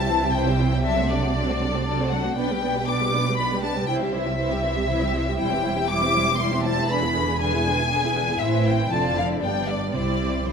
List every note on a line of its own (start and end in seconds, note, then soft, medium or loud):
0.00 2.32 C2 medium
0.00 2.32 C3 medium
0.00 0.32 A5 medium
0.08 0.20 E3 soft
0.08 0.20 E4 soft
0.08 0.20 C5 soft
0.21 0.33 G3 soft
0.21 0.33 C4 soft
0.21 0.34 G4 soft
0.21 0.33 E5 soft
0.33 0.45 E3 soft
0.33 0.45 E4 soft
0.33 0.45 C5 soft
0.33 0.84 G5 medium
0.47 0.59 G3 soft
0.47 0.59 C4 soft
0.47 0.59 G4 soft
0.47 0.59 E5 soft
0.59 0.71 E3 soft
0.59 0.71 E4 medium
0.59 0.72 E4 soft
0.59 0.72 C5 soft
0.72 0.84 G3 soft
0.72 0.84 C4 soft
0.72 0.84 G4 soft
0.72 0.84 E5 soft
0.84 0.96 F#3 soft
0.84 0.96 D4 medium
0.84 0.96 A4 soft
0.84 0.96 D5 soft
0.84 1.09 E5 medium
0.97 1.10 A3 soft
0.97 1.10 C4 soft
0.97 1.09 F#4 soft
0.97 1.09 C5 soft
1.08 1.22 F#3 soft
1.08 1.22 D4 soft
1.08 1.22 A4 soft
1.08 2.10 D5 medium
1.08 1.22 D5 soft
1.22 1.35 A3 soft
1.22 1.35 C4 soft
1.22 1.35 F#4 soft
1.22 1.34 C5 soft
1.35 1.47 F#3 soft
1.35 1.47 D4 soft
1.35 1.47 A4 soft
1.35 1.46 D5 soft
1.47 1.61 A3 soft
1.47 1.60 C4 soft
1.47 1.60 F#4 soft
1.47 1.60 C5 soft
1.61 1.73 F#3 soft
1.61 1.73 D4 soft
1.61 1.73 A4 soft
1.61 1.73 D5 soft
1.74 1.86 A3 soft
1.74 1.86 C4 soft
1.74 1.86 F#4 soft
1.74 1.86 C5 soft
1.86 1.98 F#3 soft
1.86 1.98 D4 soft
1.86 1.97 A4 soft
1.86 1.97 D5 soft
1.99 2.12 A3 soft
1.99 2.11 C4 soft
1.99 2.12 F#4 soft
1.99 2.12 C5 soft
2.10 2.24 F#3 soft
2.10 2.24 D4 soft
2.10 2.24 A4 soft
2.10 2.23 D5 soft
2.10 2.36 F#5 medium
2.23 2.36 A3 soft
2.23 2.36 C4 soft
2.23 2.36 F#4 soft
2.23 2.36 C5 soft
2.36 3.87 B1 soft
2.36 3.87 B2 medium
2.36 2.48 B3 soft
2.36 2.48 D4 soft
2.36 2.48 B4 soft
2.36 2.48 D5 soft
2.36 2.86 G5 medium
2.49 2.62 G3 soft
2.49 2.61 B3 soft
2.49 2.62 G4 soft
2.49 2.61 B4 soft
2.62 2.73 B3 soft
2.62 2.75 D4 soft
2.62 2.74 B4 medium
2.62 2.75 D5 soft
2.75 2.87 G3 soft
2.75 2.87 B3 soft
2.75 2.88 G4 soft
2.75 2.87 B4 soft
2.86 2.99 B3 soft
2.86 2.99 D4 soft
2.86 3.00 B4 soft
2.86 3.00 D5 soft
2.86 3.37 D6 medium
3.00 3.13 G3 soft
3.00 3.11 B3 soft
3.00 3.13 G4 soft
3.00 3.12 B4 soft
3.12 3.24 B3 soft
3.12 3.25 D4 soft
3.12 3.26 B4 soft
3.12 3.25 D5 soft
3.25 3.38 G3 soft
3.25 3.36 B3 soft
3.25 3.39 G4 soft
3.25 3.39 B4 soft
3.36 3.49 B3 soft
3.36 3.49 D4 soft
3.36 3.61 B5 medium
3.40 3.51 B4 soft
3.40 3.51 D5 soft
3.50 3.63 G3 soft
3.50 3.62 B3 soft
3.50 3.64 G4 soft
3.50 3.63 B4 soft
3.62 3.74 B3 soft
3.62 3.75 D4 soft
3.62 3.75 B4 soft
3.62 3.76 D5 soft
3.62 3.87 A5 medium
3.75 3.87 G3 soft
3.75 3.87 B3 soft
3.75 3.89 G4 soft
3.75 3.88 B4 soft
3.87 5.36 C2 soft
3.87 5.35 C3 medium
3.87 3.99 E3 soft
3.87 3.99 E4 soft
3.87 4.00 E4 soft
3.87 4.00 C5 soft
3.87 3.95 G5 medium
4.01 4.13 G3 soft
4.01 4.13 C4 soft
4.01 4.13 G4 soft
4.01 4.13 E5 soft
4.12 4.25 E3 soft
4.12 4.25 E4 soft
4.12 4.26 C5 medium
4.12 5.35 E5 medium
4.24 4.37 G3 soft
4.24 4.37 C4 soft
4.24 4.38 G4 soft
4.24 4.38 E5 soft
4.37 4.49 E3 soft
4.37 4.49 E4 soft
4.37 4.49 C5 soft
4.50 4.63 G3 soft
4.50 4.63 C4 soft
4.50 4.63 G4 soft
4.50 4.63 E5 soft
4.62 4.75 E3 soft
4.62 4.75 E4 soft
4.62 4.75 C5 soft
4.74 4.88 G3 soft
4.74 4.88 C4 soft
4.74 4.88 G4 soft
4.74 4.88 E5 soft
4.88 5.00 E3 soft
4.88 5.00 E4 soft
4.88 5.00 C5 soft
5.00 5.13 G3 soft
5.00 5.13 C4 soft
5.00 5.14 G4 soft
5.00 5.14 E5 soft
5.13 5.26 E3 soft
5.13 5.26 E4 soft
5.13 5.26 C5 soft
5.26 5.38 G3 soft
5.26 5.38 C4 soft
5.26 5.39 G4 soft
5.26 5.39 E5 soft
5.38 8.40 E1 soft
5.38 8.40 E2 medium
5.38 5.50 G3 medium
5.38 5.50 E4 soft
5.38 5.50 C5 soft
5.38 5.88 G5 medium
5.50 5.63 E3 soft
5.50 5.64 C4 soft
5.50 5.63 G4 soft
5.50 5.63 E5 soft
5.63 5.76 G3 soft
5.63 5.76 E4 soft
5.63 5.76 E4 medium
5.63 5.76 C5 soft
5.76 5.89 E3 soft
5.76 5.89 C4 soft
5.76 5.89 G4 soft
5.76 5.89 E5 soft
5.88 6.01 G3 medium
5.88 6.01 E4 medium
5.88 6.01 E4 soft
5.88 6.01 C5 soft
5.88 6.39 D6 medium
6.01 6.14 E3 soft
6.01 6.14 C4 soft
6.01 6.14 G4 soft
6.01 6.14 E5 soft
6.13 6.26 G3 soft
6.13 6.26 E4 medium
6.13 6.26 E4 soft
6.13 6.26 C5 soft
6.26 6.39 E3 soft
6.26 6.39 C4 soft
6.26 6.39 G4 soft
6.26 6.39 E5 soft
6.39 6.51 G3 soft
6.39 6.51 E4 soft
6.39 6.51 C5 medium
6.39 6.64 C6 medium
6.51 6.64 E3 soft
6.51 6.64 C4 soft
6.51 6.64 G4 soft
6.51 6.64 E5 soft
6.63 6.77 G3 soft
6.63 6.76 E4 soft
6.63 6.77 E4 soft
6.63 6.76 C5 medium
6.63 6.88 A5 medium
6.77 6.89 E3 soft
6.77 6.89 C4 soft
6.77 6.89 G4 soft
6.77 6.89 E5 soft
6.89 7.01 D3 medium
6.89 7.01 D4 medium
6.89 7.01 G#4 soft
6.89 7.01 B4 soft
6.89 7.39 B5 medium
7.02 7.15 E3 soft
7.02 7.15 B3 soft
7.02 7.14 E4 soft
7.02 7.14 G#4 soft
7.15 7.27 D3 soft
7.15 7.27 D4 soft
7.15 7.27 G#4 soft
7.15 7.28 B4 medium
7.27 7.39 E3 soft
7.27 7.39 B3 soft
7.27 7.40 E4 soft
7.27 7.40 G#4 soft
7.39 7.51 D3 medium
7.39 7.51 D4 soft
7.39 7.52 G#4 soft
7.39 7.52 B4 soft
7.39 8.38 G#5 medium
7.52 7.64 E3 soft
7.52 7.64 B3 soft
7.52 7.65 E4 soft
7.52 7.65 G#4 soft
7.64 7.77 D3 medium
7.64 7.77 D4 medium
7.64 7.77 G#4 soft
7.64 7.78 B4 soft
7.78 7.90 E3 soft
7.78 7.90 B3 soft
7.78 7.90 E4 soft
7.78 7.90 G#4 soft
7.89 8.01 D3 soft
7.89 8.01 D4 soft
7.89 8.02 G#4 soft
7.89 8.02 B4 soft
8.03 8.15 E3 soft
8.03 8.15 B3 soft
8.03 8.16 E4 soft
8.03 8.14 G#4 soft
8.14 8.27 D3 medium
8.14 8.27 D4 soft
8.14 8.26 G#4 soft
8.14 8.27 B4 medium
8.27 8.39 E3 soft
8.27 8.40 B3 soft
8.27 8.39 E4 soft
8.27 8.40 G#4 soft
8.40 8.87 A1 medium
8.40 8.87 A2 medium
8.40 8.87 E3 medium
8.40 8.87 C4 medium
8.40 8.87 E4 medium
8.40 8.87 C5 medium
8.40 8.65 E5 medium
8.67 8.91 G5 medium
8.91 9.42 F1 medium
8.91 9.42 F2 medium
8.91 9.42 D3 medium
8.91 9.41 C4 medium
8.91 9.16 F4 medium
8.91 9.40 D5 medium
8.91 9.16 A5 medium
9.16 9.41 E4 soft
9.16 9.26 F5 medium
9.40 9.93 G1 medium
9.40 9.93 G2 medium
9.40 9.94 G3 soft
9.40 9.94 B3 soft
9.40 9.93 D4 soft
9.40 9.92 D5 soft
9.40 9.67 G5 medium
9.68 9.92 D5 medium
9.93 10.53 C2 soft
9.93 10.41 C3 soft
9.93 10.45 G3 soft
9.93 10.45 C4 soft
9.93 10.45 E4 soft
9.93 10.44 C5 soft
9.93 10.45 D5 medium
10.46 10.53 F3 medium
10.46 10.53 G3 soft
10.46 10.53 C4 soft
10.46 10.53 E4 soft
10.46 10.53 C5 soft
10.46 10.53 C5 medium